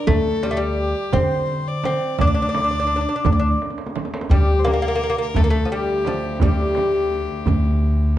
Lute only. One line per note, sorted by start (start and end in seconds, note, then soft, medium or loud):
0.07 0.44 A3 medium
0.43 0.50 G3 medium
0.51 0.58 A3 medium
0.57 1.15 G3 medium
1.13 1.84 C4 medium
1.85 2.21 C4 medium
2.21 2.26 D4 medium
2.27 2.33 D4 medium
2.34 2.41 D4 medium
2.42 2.48 D4 medium
2.49 2.56 D4 medium
2.58 2.63 D4 medium
2.64 2.70 D4 medium
2.71 2.78 D4 soft
2.80 2.86 D4 medium
2.87 2.94 D4 soft
2.96 3.00 D4 medium
3.01 3.08 D4 soft
3.09 3.15 D4 medium
3.16 3.23 D4 soft
3.26 3.31 D4 medium
3.32 3.38 D4 medium
3.39 3.47 D4 medium
4.31 4.67 G3 medium
4.65 4.72 A#3 medium
4.73 4.81 A#3 medium
4.82 4.87 A#3 medium
4.88 4.94 A#3 medium
4.95 5.02 A#3 medium
5.04 5.08 A#3 medium
5.10 5.17 A#3 medium
5.18 5.26 A#3 medium
5.36 5.43 A3 medium
5.44 5.50 A#3 medium
5.50 5.72 A3 medium
5.65 5.71 F3 medium
5.72 6.04 G3 medium
6.07 6.42 F3 medium
6.43 8.14 G3 medium